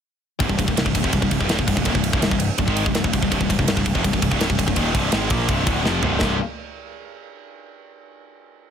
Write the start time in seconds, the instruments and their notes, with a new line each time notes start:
0.39 picked electric bass C1, distorted electric guitar C2 G2, kick, ride
0.48 picked electric bass C1, distorted electric guitar C2 G2, kick
0.58 picked electric bass C1, distorted electric guitar C2 G2, kick, ride
0.67 picked electric bass C1, distorted electric guitar C2 G2, kick
0.76 picked electric bass C1, distorted electric guitar C2 G2, snare, ride
0.85 picked electric bass C1, distorted electric guitar C2 G2, kick
0.94 picked electric bass C1, distorted electric guitar C2 G2, kick, ride
1.03 picked electric bass F1, distorted electric guitar F2 C3, kick
1.12 picked electric bass C1, distorted electric guitar C2 G2, kick, ride
1.21 picked electric bass C1, distorted electric guitar C2 G2, kick
1.31 picked electric bass C1, distorted electric guitar C2 G2, kick, ride
1.40 picked electric bass C1, distorted electric guitar C2 G2, kick
1.48 picked electric bass D1, distorted electric guitar D2 A2, snare, ride
1.58 picked electric bass C1, distorted electric guitar C2 G2, kick
1.67 picked electric bass C1, distorted electric guitar C2 G2, kick, ride
1.75 picked electric bass C1, distorted electric guitar C2 G2, kick
1.84 picked electric bass D#1, distorted electric guitar D#2 A#2, kick, ride
1.94 picked electric bass C1, distorted electric guitar C2 G2, kick
2.04 ride
2.12 picked electric bass C1, distorted electric guitar C2 G2, kick
2.22 picked electric bass C1, distorted electric guitar C2 G2, snare, ride
2.31 picked electric bass C1, distorted electric guitar C2 G2, kick
2.40 ride
2.58 picked electric bass C1, distorted electric guitar C2 G2, kick, ride
2.66 picked electric bass G#1, distorted electric guitar G#2 D#3 G#3, kick
2.76 ride
2.86 picked electric bass C1, distorted electric guitar C2 G2, kick
2.94 picked electric bass C1, distorted electric guitar C2 G2, snare, ride
3.04 picked electric bass C1, distorted electric guitar C2 G2, kick
3.13 picked electric bass C1, distorted electric guitar C2 G2, kick, ride
3.21 picked electric bass C1, distorted electric guitar C2 G2, kick
3.30 picked electric bass C1, distorted electric guitar C2 G2, kick, ride
3.40 picked electric bass C1, distorted electric guitar C2 G2, kick
3.49 picked electric bass C1, distorted electric guitar C2 G2, kick, ride
3.59 picked electric bass C1, distorted electric guitar C2 G2, kick
3.67 picked electric bass C1, distorted electric guitar C2 G2, snare, ride
3.77 picked electric bass C1, distorted electric guitar C2 G2, kick
3.86 picked electric bass C1, distorted electric guitar C2 G2, kick, ride
3.94 picked electric bass F1, distorted electric guitar F2 C3, kick
4.04 picked electric bass C1, distorted electric guitar C2 G2, kick, ride
4.13 picked electric bass C1, distorted electric guitar C2 G2, kick
4.22 picked electric bass C1, distorted electric guitar C2 G2, kick, ride
4.30 picked electric bass C1, distorted electric guitar C2 G2, kick
4.39 picked electric bass D1, distorted electric guitar D2 A2, snare, ride
4.49 picked electric bass C1, distorted electric guitar C2 G2, kick
4.57 picked electric bass C1, distorted electric guitar C2 G2, kick, ride
4.66 picked electric bass C1, distorted electric guitar C2 G2, kick
4.75 picked electric bass D#1, distorted electric guitar D#2 A#2 D#3, kick, ride
4.94 picked electric bass C1, distorted electric guitar C2 G2 C3, kick, ride
5.12 picked electric bass G#1, distorted electric guitar G#2 D#3 G#3, snare, ride
5.30 picked electric bass A#1, distorted electric guitar A#2 F3 A#3, kick, ride
5.48 picked electric bass C1, distorted electric guitar C2 G2 C3, kick, ride
5.66 picked electric bass D1, distorted electric guitar D2 A2 D3, kick, ride
5.83 picked electric bass F1, distorted electric guitar F2 C3 F3, snare
6.02 picked electric bass C1, distorted electric guitar C2 G2 C3, floor tom
6.20 picked electric bass C1, distorted electric guitar C2 G2 C3, kick, snare